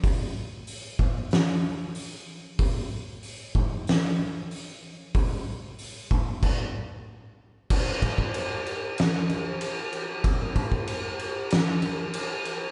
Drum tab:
CC |----------------|----------------|--------x-------|x-x-x-x-x-x-x-x-|
HH |o---o---o---o---|o---o---o---o---|o---o-----------|----------------|
SD |--------o-------|--------o-------|----------------|--------o-------|
BD |o-----o---------|o-----o---------|o-----o-o-------|o-oo------------|

CC |x-x-x-x-x-x-x-x-|
HH |----------------|
SD |--------o-------|
BD |o-oo------------|